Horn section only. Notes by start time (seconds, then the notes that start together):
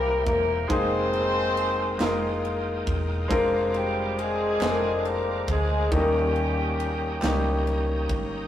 Already playing: A#3 E4 G4 A#4
0.25 A#3 A#4
0.68 C4 D#4 G#4 C5
3.75 G3 G4
4.19 G#3 C4 D4 G#4
5.06 A#3 A#4
5.50 G#3 G#4
5.92 G3 A#3 C#4 G4